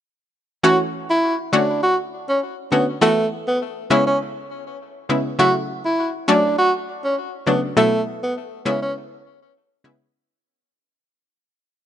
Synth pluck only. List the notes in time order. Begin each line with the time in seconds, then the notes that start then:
0.63 E3 A3 C#4 F#4
1.53 D3 A3 C#4 F#4
2.72 D3 A3 C#4 F#4
3.01 E3 A3 B3 F#4
3.90 C#3 G#3 B3 E4
5.09 C#3 G#3 B3 E4
5.39 C#3 F#3 A3 E4
6.28 F#3 A3 C#4 D4
7.47 C#3 F#3 A3 D4
7.77 B2 F#3 A3 E4
8.65 C#3 G#3 B3 E4
9.84 C#3 G#3 B3 E4